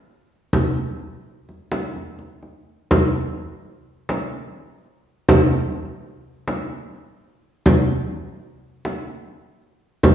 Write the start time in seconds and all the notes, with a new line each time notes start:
0.53 frame drum
1.49 frame drum
1.72 frame drum
1.96 frame drum
2.19 frame drum
2.42 frame drum
2.91 frame drum
4.09 frame drum
5.29 frame drum
6.48 frame drum
7.66 frame drum
8.85 frame drum
10.03 frame drum